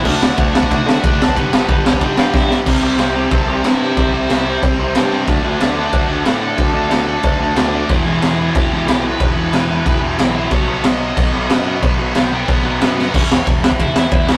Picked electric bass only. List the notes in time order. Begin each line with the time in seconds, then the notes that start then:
0.05 D2
0.21 D2
0.38 D2
0.71 D2
0.86 D3
1.04 F#1
1.36 G1
1.52 G1
1.68 G1
2.01 G1
2.18 G2
2.34 G2
2.66 C2
2.83 C2
2.98 C2
3.31 C2
3.48 C2
3.64 G2
3.97 C2
4.13 C2
4.29 C2
4.63 C2
4.79 C2
4.95 G2
5.27 D2
5.44 D2
5.60 D2
5.93 D2
6.09 D2
6.25 A2
6.58 D2
6.73 D2
6.89 D2
7.24 D2
7.39 D2
7.55 D2
7.89 E1
8.06 E1
8.22 E1
8.55 E1
8.71 E1
8.87 B1
9.20 E1
9.37 E1
9.53 E1
9.86 E1
10.02 E1
10.18 B1
10.51 B1
10.67 B1
10.84 B1
11.17 B1
11.34 B1
11.50 F#2
11.82 B1
11.99 B1
12.16 B1
12.48 B1
12.65 B1
12.81 F#2
13.14 E1
13.30 E1
13.47 E1
13.79 E1
13.96 E2
14.12 E2